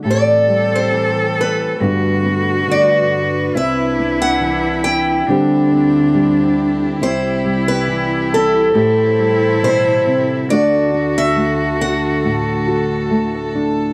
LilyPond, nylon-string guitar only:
\new Staff \with { instrumentName = "Nylon-string guitar" } { \clef bass \time 4/4 \key a \dorian \tempo 4 = 69 << { g'8 g4. <d b d' fis'>8 b4. | e'8 b4. <g c' g'>8 c'4. | e'8 g4. g'8 g4. | <a d' fis'>8 d'2 fis'4 d'8 | } \\ { a,4 e4 g,4 d4 | c4 e4 d4 g4 | c4 e4 a,4 b,8 c8 | d4 a4 a,4 a4 | } >> }